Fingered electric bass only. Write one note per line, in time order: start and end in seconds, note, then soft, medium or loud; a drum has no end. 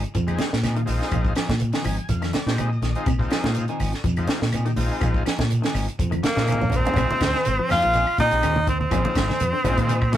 0.16 0.37 F2 medium
0.53 0.84 A#2 medium
0.88 1.00 A#1 medium
1.12 1.34 A#1 medium
1.49 1.71 A#2 medium
1.85 1.97 G#1 medium
2.09 2.31 F2 medium
2.46 2.78 A#2 medium
2.82 2.94 A#1 medium
3.07 3.28 A#1 medium
3.44 3.66 A#2 medium
3.80 3.92 G#1 medium
4.04 4.26 F2 medium
4.42 4.73 A#2 medium
4.77 4.89 A#1 medium
5.02 5.23 A#1 medium
5.39 5.61 A#2 medium
5.74 5.86 G#1 medium
5.99 6.21 F2 medium
6.37 6.68 A#2 medium
6.72 6.84 A#1 medium
6.97 7.08 A#1 medium
7.10 muted fingered electric bass stroke soft
7.21 7.33 D2 medium
7.47 7.58 G#1 medium
7.71 7.82 F2 loud
7.84 8.05 A#1 medium
8.09 muted fingered electric bass stroke soft
8.18 8.30 A#2 medium
8.32 8.42 A#1 medium
8.44 8.86 D#2 medium
8.92 9.03 A#1 medium
9.16 9.27 G#1 medium
9.41 9.52 F2 medium
9.64 9.76 A#1 medium
9.77 10.17 A#2 medium